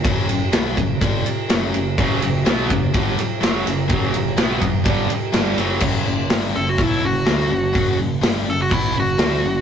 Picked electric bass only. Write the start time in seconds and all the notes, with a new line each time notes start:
0.04 F#1
0.30 F#1
0.55 B1
0.77 F#1
1.02 G1
1.29 muted picked electric bass stroke
1.52 F#1
1.75 F#1
1.98 F#1
2.23 F#1
2.46 B1
2.70 F#1
2.94 G1
3.43 F#1
3.67 F#1
3.90 F#1
4.14 F#1
4.37 B1
4.62 F#1
4.86 G1
5.11 muted picked electric bass stroke
5.34 G1
5.57 F#1
5.81 F#1
6.07 F#1
6.31 G1
6.56 F#1
6.79 B1
7.04 F#1
7.28 D2
7.52 F#1
7.75 F#1
8.01 F#1
8.25 G1
8.48 F#1
8.71 B1
8.95 F#1
9.19 D2
9.44 F#1